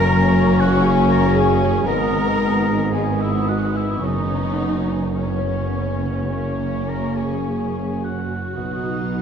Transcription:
Already playing: F#1 F#2 A#3 C#4 F#4 A#4 C#5 A#5 C#6
0.08 C#3
0.33 C#4
0.58 F#4 F#5
0.84 G#4 C#5 G#5
1.10 F#4 A#4 A#5
1.33 C#4 G#4
1.38 G#5
1.60 C#3
1.84 G#1 G#2 G#3 B3 D#4 A#4 A#5 D#6
2.11 D#3
2.89 G#3 B3 D#4 G#4 D#6
2.93 G#5
3.18 D#4 E4 E5
3.46 B3 F#4 F#5
3.74 D#3 E4 E5
4.00 F#1 F#2 B3 C#4 C#6
4.04 D#4 D#5
4.31 C#3
4.60 B3
4.90 C#4
5.13 B3 C#4 C#5 C#6
5.18 B3 C#4 C#5
5.46 C#4
5.76 B3
6.04 C#3
6.30 F#2 A#3 C#4 C#6
6.61 C#3
6.88 A#3 A#4 A#5
7.16 C#4 G#4 G#5
7.45 C#5
7.74 C#4
8.03 F#4 F#5
8.30 C#3
8.55 B1 B2 B3 D#4 D#6
8.84 F#3
9.11 B3

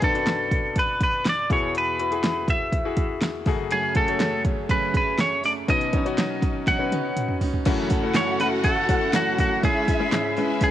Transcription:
Already playing: B1 F#2 D4 F#4 B4
0.02 D4 F#4 A4 B4, kick, closed hi-hat
0.14 D4 F#4 B4, closed hi-hat
0.27 snare, clap, closed hi-hat
0.51 kick, closed hi-hat
0.76 B4, kick, closed hi-hat
1.01 B4, kick, closed hi-hat
1.25 D5, snare, clap, closed hi-hat
1.50 E2 B2 E4 F#4 G#4 C#5, kick, closed hi-hat
1.75 B4, closed hi-hat
1.99 E4 F#4 B4, closed hi-hat
2.11 E4 F#4 G#4, closed hi-hat
2.24 snare, clap, closed hi-hat
2.48 E5, kick, closed hi-hat
2.73 kick, closed hi-hat
2.85 E4 F#4 G#4
2.97 kick, closed hi-hat
3.22 snare, clap, closed hi-hat
3.46 F#2 C#3 A3 F#4 G#4, kick, open hi-hat
3.71 F#2 C#3 F#3 A3 C#4 G#4, closed hi-hat
3.95 A3 F#4 G#4 A4, kick, closed hi-hat
4.08 A3 F#4 C#5, closed hi-hat
4.20 F#3 A3 C#4 G#4, snare, clap, closed hi-hat
4.45 kick, closed hi-hat
4.69 F#2 C#3 F#3 A3 C#4 G#4 B4, kick, closed hi-hat
4.94 F#3 A3 C#4 G#4 B4, kick, closed hi-hat
5.19 C#5, snare, clap, closed hi-hat
5.43 F#3 A3 C#4 G#4 D5, open hi-hat
5.68 B2 F#3 C#4 D#4 F#4 B4 D#5, kick, closed hi-hat
5.81 closed hi-hat
5.93 C#4 D#4 F#4 C#5, kick, closed hi-hat
6.05 C#4 D#4 F#4, closed hi-hat
6.17 F#3 C#4 D#4 F#4, snare, clap, closed hi-hat
6.42 kick, snare, closed hi-hat
6.67 B2 F#3 C#4 D#4 F#4 F#5, kick, snare, closed hi-hat
6.79 C#4 D#4 B4
6.92 C#4 D#4 F#4, closed hi-hat, high tom
7.16 closed hi-hat, mid tom
7.28 mid tom
7.41 C#4 D#4 F#4, floor tom, open hi-hat
7.53 floor tom
7.65 F#2 C#3 E3 A3 C#4 E4 F#4 A4 F#5, kick, open hi-hat, crash
7.90 E3 A3 C#4 A4, kick, open hi-hat
8.03 A3 C#4 E4 F#4
8.14 F#2 C#3 E3 A3 C#4 A4 C#5, snare, clap, open hi-hat
8.39 E3 A3 C#4 E4 F#4 A4 B4, snare, open hi-hat
8.64 E3 A3 C#4 A4, kick, open hi-hat
8.89 E3 A3 C#4 E4 F#4 A4, kick, open hi-hat
9.13 F#2 C#3 E3 A3 C#4 E4 F#4 A4, snare, clap, open hi-hat
9.38 F#4, kick, open hi-hat
9.63 G#2 C#3 G#3 C#4 E4 G#4 E5, kick, open hi-hat
9.87 G#3 C#4 E4 G#4, kick, open hi-hat
10.00 G#3 C#4 E4 G#4
10.12 G#2 C#3 G#3 C#4 E4 G#4, snare, clap, open hi-hat
10.37 G#3 C#4 E4 G#4 B4, open hi-hat
10.61 G#3 C#4 E4 G#4 G#5, kick, open hi-hat

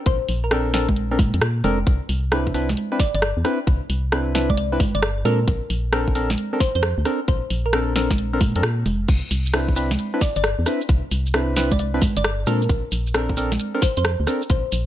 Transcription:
0.06 A#1 C5, kick, closed hi-hat
0.29 A#1, open hi-hat
0.44 A#4
0.51 C4 D4 A4 A#4, cross-stick, closed hi-hat
0.74 C4 D4 A4 A#4, snare, open hi-hat
0.89 kick, closed hi-hat, high conga
0.96 closed hi-hat
1.11 C4 D4 A4 A#4
1.19 A#2, kick, open hi-hat, high conga
1.34 F2, closed hi-hat
1.42 A#2, cross-stick, closed hi-hat
1.64 F1 C4 D4 A4 A#4, open hi-hat, high conga
1.87 C2, kick, closed hi-hat
2.09 C2, open hi-hat
2.32 C4 D4 E4 B4, cross-stick, closed hi-hat
2.47 kick
2.54 C4 D4 E4 B4, open hi-hat
2.69 snare, closed hi-hat, high conga
2.77 closed hi-hat
2.92 C4 D4 E4 B4
3.00 D5, kick, snare, open hi-hat
3.15 G1 D5, closed hi-hat
3.22 cross-stick, closed hi-hat
3.37 E2
3.45 C4 D4 E4 B4, cross-stick, open hi-hat
3.67 C2, kick, closed hi-hat
3.90 C2, open hi-hat
4.12 C4 D4 E4 B4, cross-stick, closed hi-hat
4.35 C4 D4 E4 B4, snare, open hi-hat
4.50 D5, kick, closed hi-hat, high conga
4.57 D5, closed hi-hat
4.72 C4 D4 E4 B4
4.80 G1, kick, open hi-hat, high conga
4.95 G1 D5, closed hi-hat
5.02 D5, cross-stick, closed hi-hat
5.25 A#2 C4 D4 A4 A#4, open hi-hat, high conga
5.48 A#1, kick, closed hi-hat
5.70 A#1, open hi-hat
5.93 C4 D4 A4 A#4, cross-stick, closed hi-hat
6.08 kick
6.15 C4 D4 A4 A#4, open hi-hat
6.30 snare, closed hi-hat, high conga
6.38 closed hi-hat
6.53 C4 D4 A4 A#4
6.60 C5, kick, snare, open hi-hat
6.75 F2 C5, closed hi-hat
6.83 cross-stick, closed hi-hat
6.98 D2
7.05 C4 D4 A4 A#4, cross-stick, open hi-hat
7.28 A#1 C5, kick, closed hi-hat
7.50 A#1, open hi-hat
7.66 A#4
7.73 C4 D4 A4 A#4, cross-stick, closed hi-hat
7.96 C4 D4 A4 A#4, snare, open hi-hat
8.11 kick, snare, closed hi-hat, high conga
8.18 closed hi-hat
8.33 C4 D4 A4 A#4
8.41 A#2, kick, open hi-hat, high conga
8.56 F2 C4 D4 A4 A#4, closed hi-hat
8.63 A#2, cross-stick, closed hi-hat
8.86 F1, open hi-hat, high conga
9.08 C2, kick, closed hi-hat, crash, shaker
9.31 C2, open hi-hat, shaker
9.46 shaker
9.54 C4 D4 E4 B4, cross-stick, closed hi-hat, shaker
9.69 kick
9.76 C4 D4 E4 B4, open hi-hat, shaker
9.91 snare, closed hi-hat, high conga, shaker
9.99 closed hi-hat, shaker
10.14 C4 D4 E4 B4
10.21 D5, kick, snare, open hi-hat, shaker
10.36 G1 D5, closed hi-hat, shaker
10.44 cross-stick, closed hi-hat, shaker
10.59 E2
10.66 C4 D4 E4 B4, cross-stick, open hi-hat, shaker
10.81 shaker
10.89 C2, kick, closed hi-hat, shaker
11.11 C2, open hi-hat, shaker
11.26 shaker
11.34 C4 D4 E4 B4, cross-stick, closed hi-hat, shaker
11.57 C4 D4 E4 B4, snare, open hi-hat, shaker
11.71 D5, kick, closed hi-hat, high conga, shaker
11.79 D5, closed hi-hat, shaker
11.94 C4 D4 E4 B4
12.02 G1, kick, open hi-hat, high conga, shaker
12.17 G1 D5, closed hi-hat, shaker
12.24 D5, cross-stick, closed hi-hat, shaker
12.47 A#2 C4 D4 A4 A#4, open hi-hat, high conga, shaker
12.62 shaker
12.69 A#1, kick, closed hi-hat, shaker
12.92 A#1, open hi-hat, shaker
13.07 shaker
13.14 C4 D4 A4 A#4, cross-stick, closed hi-hat, shaker
13.29 kick
13.37 C4 D4 A4 A#4, open hi-hat, shaker
13.52 snare, closed hi-hat, high conga, shaker
13.60 closed hi-hat, shaker
13.75 C4 D4 A4 A#4
13.82 C5, kick, snare, open hi-hat, shaker
13.97 F2 C5, closed hi-hat, shaker
14.05 cross-stick, closed hi-hat, shaker
14.20 D2
14.27 C4 D4 A4 A#4, cross-stick, open hi-hat, shaker
14.42 shaker
14.50 A#1 C5, kick, closed hi-hat, shaker
14.72 A#1, open hi-hat, shaker

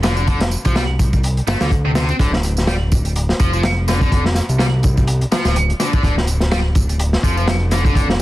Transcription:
Already playing: F1
0.03 D3, snare, closed hi-hat, tambourine
0.17 D3, tambourine
0.27 D3, kick, closed hi-hat, tambourine
0.40 snare, closed hi-hat
0.51 tambourine
0.65 C2 F3, kick, closed hi-hat, tambourine
0.76 G3, snare, closed hi-hat, tambourine
0.99 kick, closed hi-hat, tambourine
1.13 kick, tambourine
1.23 closed hi-hat, tambourine
1.37 closed hi-hat
1.47 G1 A3, snare, closed hi-hat, tambourine
1.61 D2 D3, snare, closed hi-hat, tambourine
1.71 kick, closed hi-hat, tambourine
1.85 C3
1.95 C3, snare, closed hi-hat, tambourine
2.09 C4, tambourine
2.19 D1 D3, kick, closed hi-hat, tambourine
2.33 snare
2.43 closed hi-hat, tambourine
2.57 snare, tambourine
2.67 G3, snare, closed hi-hat, tambourine
2.92 kick, closed hi-hat, tambourine
3.05 closed hi-hat, tambourine
3.16 closed hi-hat, tambourine
3.29 snare
3.40 F1 F3, kick, closed hi-hat, tambourine
3.53 F3, tambourine
3.63 snare, closed hi-hat, tambourine
3.88 D3, snare, closed hi-hat, tambourine
4.01 D3, kick, tambourine
4.12 D3, kick, closed hi-hat, tambourine
4.26 snare
4.35 snare, closed hi-hat, tambourine
4.49 C2, closed hi-hat, tambourine
4.59 G3, snare, closed hi-hat
4.83 kick, closed hi-hat, tambourine
4.97 kick, tambourine
5.07 closed hi-hat, tambourine
5.21 closed hi-hat
5.32 F3, snare, closed hi-hat, tambourine
5.45 D1 F3, snare, tambourine
5.56 closed hi-hat, tambourine
5.70 closed hi-hat
5.80 D3, snare, closed hi-hat, tambourine
5.93 D3, kick, tambourine
6.03 D1 D3, kick, closed hi-hat, tambourine
6.18 snare
6.27 closed hi-hat, tambourine
6.40 snare, tambourine
6.52 G3, snare, closed hi-hat, tambourine
6.75 kick, closed hi-hat, tambourine
6.89 closed hi-hat, tambourine
6.99 closed hi-hat, tambourine
7.13 snare
7.23 F1 F3, kick, closed hi-hat, tambourine
7.37 F3, tambourine
7.47 snare, closed hi-hat, tambourine
7.71 D3, snare, closed hi-hat, tambourine
7.85 D3, kick, tambourine
7.95 D3, kick, closed hi-hat, tambourine
8.10 snare

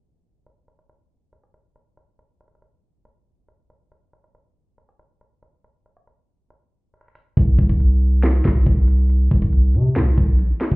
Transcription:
0.46 closed hi-hat
0.68 closed hi-hat
0.79 closed hi-hat
0.89 closed hi-hat
1.33 closed hi-hat
1.44 closed hi-hat
1.54 closed hi-hat
1.76 closed hi-hat
1.97 closed hi-hat
2.19 closed hi-hat
2.41 closed hi-hat
2.48 closed hi-hat
2.55 closed hi-hat
2.62 closed hi-hat
3.05 closed hi-hat
3.48 closed hi-hat
3.70 closed hi-hat
3.92 closed hi-hat
4.13 closed hi-hat
4.24 closed hi-hat
4.35 closed hi-hat
4.78 closed hi-hat
4.89 closed hi-hat
4.99 closed hi-hat
5.21 closed hi-hat
5.43 closed hi-hat
5.64 closed hi-hat
5.86 closed hi-hat
5.97 closed hi-hat
6.07 closed hi-hat
6.50 closed hi-hat
6.94 closed hi-hat
7.01 closed hi-hat
7.08 closed hi-hat
7.15 closed hi-hat
7.37 C2, kick, closed hi-hat
7.59 C2, kick, closed hi-hat
7.69 kick, closed hi-hat
7.80 closed hi-hat
8.23 snare, clap, closed hi-hat
8.34 closed hi-hat
8.45 C2, kick, snare, clap, closed hi-hat
8.66 C2, kick, closed hi-hat
8.88 closed hi-hat
9.10 closed hi-hat
9.31 C2, kick, closed hi-hat
9.38 kick, closed hi-hat
9.46 closed hi-hat
9.53 closed hi-hat
9.75 C3, open hi-hat
9.96 C2, snare, clap, closed hi-hat
10.18 C2, kick
10.39 A#1, closed hi-hat
10.61 snare, clap, closed hi-hat
10.72 C2, kick

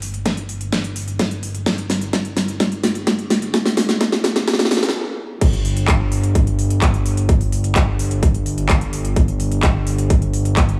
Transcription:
Already playing: G1
0.02 open hi-hat
0.14 closed hi-hat
0.26 kick, snare, closed hi-hat
0.37 closed hi-hat
0.49 open hi-hat
0.61 closed hi-hat
0.72 kick, snare, closed hi-hat
0.84 closed hi-hat
0.96 open hi-hat
1.08 closed hi-hat
1.19 kick, snare, closed hi-hat
1.31 closed hi-hat
1.43 open hi-hat
1.55 closed hi-hat
1.66 kick, snare, closed hi-hat
1.78 closed hi-hat
1.90 snare, open hi-hat
2.01 closed hi-hat
2.13 kick, snare, closed hi-hat
2.25 closed hi-hat
2.37 snare, open hi-hat
2.48 closed hi-hat
2.60 kick, snare, closed hi-hat
2.72 closed hi-hat
2.83 snare, open hi-hat
2.95 closed hi-hat
3.07 kick, snare, closed hi-hat
3.19 closed hi-hat
3.30 snare, open hi-hat
3.42 closed hi-hat
3.54 kick, snare, closed hi-hat
3.66 snare, open hi-hat
3.77 snare, open hi-hat
3.89 snare, closed hi-hat
4.01 kick, snare, closed hi-hat
4.12 snare, closed hi-hat
4.24 snare, open hi-hat
4.36 snare, closed hi-hat
4.48 kick, snare, closed hi-hat
4.53 snare
4.59 snare, closed hi-hat
4.65 snare
4.71 snare, open hi-hat
4.77 snare
4.83 snare, closed hi-hat
4.89 snare
5.41 G1, kick, closed hi-hat, crash
5.53 closed hi-hat
5.65 open hi-hat
5.77 closed hi-hat
5.88 kick, clap, closed hi-hat
6.12 open hi-hat
6.24 closed hi-hat
6.35 kick, closed hi-hat
6.47 closed hi-hat
6.59 open hi-hat
6.70 closed hi-hat
6.82 kick, clap, closed hi-hat
6.94 closed hi-hat
7.06 open hi-hat
7.17 closed hi-hat
7.29 kick, closed hi-hat
7.41 open hi-hat
7.52 open hi-hat
7.64 closed hi-hat
7.76 kick, clap, closed hi-hat
7.99 open hi-hat
8.11 closed hi-hat
8.23 kick, closed hi-hat
8.34 closed hi-hat
8.46 open hi-hat
8.58 closed hi-hat
8.69 kick, clap, closed hi-hat
8.81 closed hi-hat
8.93 open hi-hat
9.05 closed hi-hat
9.16 kick, closed hi-hat
9.28 closed hi-hat
9.40 open hi-hat
9.52 closed hi-hat
9.63 kick, clap, closed hi-hat
9.87 open hi-hat
9.98 closed hi-hat
10.10 kick, closed hi-hat
10.22 closed hi-hat
10.34 open hi-hat
10.45 closed hi-hat
10.57 kick, clap, closed hi-hat
10.69 closed hi-hat

